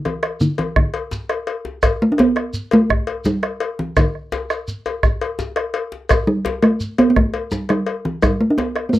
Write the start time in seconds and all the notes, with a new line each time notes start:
0.05 E3, bombo rim, cowbell, djembe tone
0.23 bombo rim, cowbell
0.40 D3, shekere
0.58 E3, cowbell, djembe slap, djembe tone
0.76 D3, bombo rim, bombo low, djembe bass
0.94 cowbell
1.11 djembe slap, djembe tone, shekere
1.29 bombo rim, cowbell
1.47 bombo rim, cowbell
1.65 djembe slap, djembe tone
1.83 bombo rim, bombo low, cowbell, djembe bass, shekere
2.02 A3
2.12 D4
2.18 B3, bombo rim, cowbell, djembe slap, djembe tone
2.36 bombo rim, cowbell
2.54 shekere
2.71 A3, cowbell, djembe slap, djembe tone
2.90 bombo rim, bombo low, djembe bass
3.07 cowbell
3.25 G3, djembe slap, djembe tone, shekere
3.43 bombo rim, cowbell
3.60 bombo rim, cowbell
3.79 E3, djembe slap, djembe tone
3.97 D3, bombo rim, bombo low, cowbell, djembe bass, shekere
4.15 bombo rim
4.32 cowbell, djembe slap, djembe tone, shekere
4.50 bombo rim, cowbell, shekere
4.68 shekere
4.86 cowbell, djembe tone, shekere
5.03 bombo rim, bombo low, djembe bass, shekere
5.21 cowbell
5.39 djembe slap, djembe tone, shekere
5.56 bombo rim, cowbell
5.74 cowbell
5.92 djembe slap
6.09 bombo rim, bombo low, cowbell, djembe bass, shekere
6.27 G3
6.45 bombo rim, cowbell, djembe slap, djembe tone
6.62 A3, bombo rim, cowbell
6.80 shekere
6.98 B3, cowbell, djembe slap, djembe tone
7.10 B3
7.16 A3, bombo rim, bombo low, djembe bass
7.34 cowbell
7.51 G3, djembe slap, djembe tone, shekere
7.69 G3, bombo rim, cowbell
7.86 bombo rim, cowbell
8.05 E3, djembe slap, djembe tone
8.22 G3, bombo rim, bombo low, cowbell, djembe bass, shekere
8.41 A3
8.50 D4
8.58 B3, bombo rim, cowbell, djembe slap, djembe tone
8.76 bombo rim, cowbell
8.89 A3 B3
8.93 shekere